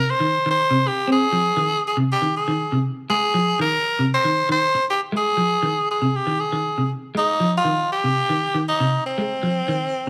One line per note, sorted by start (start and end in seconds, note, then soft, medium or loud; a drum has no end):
0.00 0.13 C3 medium
0.00 0.12 A#4 medium
0.10 0.47 C5 loud
0.20 0.38 D#3 medium
0.46 0.64 D#3 medium
0.51 0.89 C5 loud
0.71 0.88 C3 medium
0.87 1.10 G4 loud
1.07 1.25 C4 medium
1.12 1.81 G#4 loud
1.32 1.50 F3 medium
1.57 1.75 D#3 medium
1.87 1.98 G#4 medium
1.97 2.15 C3 medium
2.12 2.34 G4 medium
2.22 2.40 D#3 medium
2.36 2.82 G#4 medium
2.48 2.65 D#3 medium
2.72 2.90 C3 medium
3.10 3.27 G#3 medium
3.10 3.57 G#4 loud
3.34 3.52 F3 medium
3.59 3.77 D#3 medium
3.59 4.08 A#4 loud
3.99 4.17 C3 medium
4.14 4.48 C5 loud
4.25 4.42 D#3 medium
4.49 4.67 D#3 medium
4.49 4.85 C5 loud
4.75 muted clean electric guitar stroke medium
4.90 5.01 G4 medium
5.12 5.30 G#3 medium
5.17 5.86 G#4 loud
5.37 5.55 F3 medium
5.63 5.80 D#3 medium
5.91 6.17 G#4 medium
6.02 6.19 C3 medium
6.16 6.41 G4 medium
6.27 6.44 D#3 medium
6.40 6.90 G#4 medium
6.52 6.70 D#3 medium
6.78 6.95 C3 medium
7.15 7.32 G#3 medium
7.15 7.52 D#4 loud
7.40 7.58 F3 medium
7.57 7.90 F4 medium
7.65 7.83 D#3 medium
7.92 8.63 G4 loud
8.04 8.22 C3 medium
8.29 8.47 D#3 medium
8.54 8.72 D#3 medium
8.69 9.04 D#4 loud
8.80 8.98 C3 medium
9.06 10.10 C4 medium
9.18 9.35 G#3 medium
9.43 9.61 F3 medium
9.68 9.86 D#3 medium